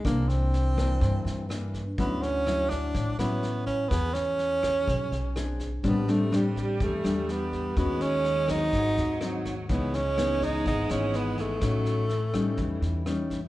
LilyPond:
<<
  \new Staff \with { instrumentName = "Nylon-string guitar" } { \time 4/4 \key a \lydian \tempo 4 = 124 << { <e bes d'>4. <e bes d'>4. <e bes d'>8 r8 | <fis cis' e'>4 <fis e'>4. <fis cis' e'>4. | gis'4. gis'4. <c' d' gis'>8 r8 | <g c' d'>8 <g c' d'>8 <g c' d'>4. <g d'>4. |
<cis' fis'>4. <fis c' dis'>4. <fis bis dis'>8 r8 | <e b dis'>8 r8 <e b dis'>4. <e b dis'>4. | <cis' dis'>4 r8 <g cis' dis'>4. <g cis' dis'>8 r8 | } \\ { c2 g,2 | d2 a,2 | e2 r2 | a,2 e2 |
dis2 gis,2 | cis2 gis,2 | a,2 e2 | } >> }
  \new Staff \with { instrumentName = "Tenor saxophone" } { \time 4/4 \key a \lydian bes8 c'2. r8 | b8 cis'4 d'4 b4 cis'8 | b8 cis'2. r8 | b8 a8 g4 a4 b4 |
b8 cis'4 dis'2 r8 | b8 cis'4 dis'8 dis'8 cis'8 b8 a8~ | a2. r4 | }
  \new Staff \with { instrumentName = "Viola" } { \clef bass \time 4/4 \key a \lydian r1 | r1 | r1 | g1 |
gis2 fis2 | gis1 | fis4 e2~ e8 r8 | }
  \new Staff \with { instrumentName = "Upright bass" } { \clef bass \time 4/4 \key a \lydian c,2 g,8 g,4. | d,2 a,,8 a,,4. | e,2 b,,8 b,,4. | a,,2 e,8 e,4. |
dis,2 gis,,8 dis,4. | cis,2 gis,,8 gis,,4. | a,,2 e,8 e,4. | }
  \new DrumStaff \with { instrumentName = "Drums" } \drummode { \time 4/4 <bd ss sn>8 sn8 sn8 <bd ss sn>8 <bd sn>8 sn8 <ss sn>8 <bd sn>8 | <bd sn>8 sn8 <ss sn>8 <bd sn>8 <bd sn>8 <ss sn>8 sn8 <bd sn>8 | <bd ss sn>8 sn8 sn8 <bd ss sn>8 <bd sn>8 sn8 <ss sn>8 <bd sn>8 | <bd sn>8 sn8 <ss sn>8 <bd sn>8 <bd sn>8 <ss sn>8 sn8 <bd sn>8 |
<bd ss sn>8 sn8 sn8 <bd ss sn>8 <bd sn>8 sn8 <ss sn>8 <bd sn>8 | <bd sn>8 sn8 <ss sn>8 <bd sn>8 <bd sn>8 <ss sn>8 sn8 <bd sn>8 | <bd ss sn>8 sn8 sn8 <bd ss sn>8 <bd sn>8 sn8 <ss sn>8 <bd sn>8 | }
>>